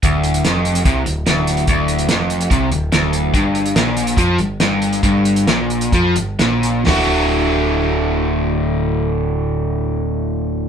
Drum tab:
HH |x-xxx-xxx-x-x-xx|x-xxx-xxx-x-x-x-|x-xxx-xxx-x-x-xx|x-xxx-xxx-x-x-x-|
SD |----o-------o-o-|----o-------o---|----o-------o---|----o-------o-o-|
FT |----------------|----------------|----------------|----------------|
BD |o-------o-------|o-------o-------|o-------o-------|o-------o-------|

HH |o---------------|----------------|
SD |o---------------|----------------|
FT |o---------------|----------------|
BD |----------------|----------------|